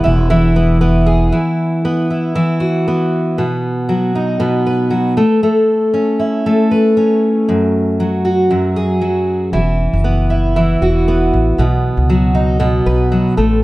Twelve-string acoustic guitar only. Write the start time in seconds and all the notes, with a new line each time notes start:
Already playing: E3 B3 G#4
0.04 E4
0.30 E3
0.56 B3
0.81 B3
1.06 G#4
1.32 E3
1.85 B3
2.10 E4
2.35 E3
2.60 F#4
2.88 B3
3.38 B2
3.89 F#3
4.15 D#4
4.40 B2
4.66 B4
4.90 F#3
5.17 A3
5.43 A3
5.94 C#4
6.20 E4
6.46 A3
6.71 B4
6.97 C#4
7.49 F#2
8.00 F#3
8.25 F#4
8.51 F#2
8.76 G#4
9.01 F#3
9.53 E3
10.04 B3
10.30 E4
10.56 E3
10.82 F#4
11.08 B3
11.59 B2
12.10 F#3
12.35 D#4
12.60 B2
12.86 B4
13.12 F#3
13.37 A3